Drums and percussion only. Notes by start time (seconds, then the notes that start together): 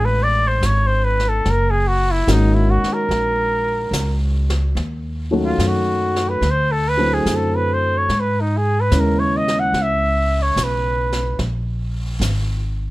0.63 snare, hi-hat pedal
1.20 snare
1.45 brush sweep, snare
2.28 snare, hi-hat pedal
2.84 snare
3.11 brush sweep, snare
3.93 snare, hi-hat pedal
4.50 snare
4.77 brush sweep, snare
5.59 snare, hi-hat pedal
6.16 snare
6.42 brush sweep, snare
7.26 snare, hi-hat pedal
8.09 brush sweep, snare
8.92 snare, hi-hat pedal
9.48 snare
9.74 brush sweep, snare
10.57 snare, hi-hat pedal
11.12 snare
11.39 brush sweep, snare
12.21 snare, hi-hat pedal